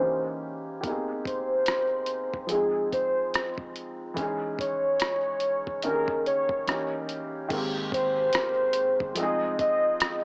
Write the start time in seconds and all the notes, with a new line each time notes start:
Already playing: C5
0.00 E3 A#3 C#4 D#4 G4
0.81 A#3 G4, kick, closed hi-hat
0.85 B3 D#4
0.89 C4 G#4
1.25 C5, kick, closed hi-hat
1.66 cross-stick, closed hi-hat
2.06 closed hi-hat
2.34 kick
2.47 F3 G#3, closed hi-hat
2.51 C4 D#4 G#4
2.55 G#4
2.92 C5, kick, closed hi-hat
3.34 cross-stick, closed hi-hat
3.58 kick
3.76 closed hi-hat
4.14 E3 G#3, kick, closed hi-hat
4.18 C#4 D#4
4.22 G#4
4.59 C#5, kick, closed hi-hat
5.00 cross-stick, closed hi-hat
5.40 closed hi-hat
5.67 kick
5.83 D#3 A#3 C#4 D#4 A#4, closed hi-hat
5.87 G4
5.94 G#4
6.08 kick
6.26 C#5, closed hi-hat
6.49 kick
6.67 E3 A#3 C#4 D#4, cross-stick, closed hi-hat
6.71 G4
7.09 closed hi-hat
7.48 G#1 D#3 G#3, kick, closed hi-hat, crash
7.53 A#3 C4
7.57 G4
7.92 C5, kick, closed hi-hat
8.33 cross-stick, closed hi-hat
8.73 closed hi-hat
9.00 G1, kick
9.15 F1 F3 G#3 D#5, closed hi-hat
9.19 C4 D#4
9.23 G#4
9.59 D#5, kick, closed hi-hat
10.00 cross-stick, closed hi-hat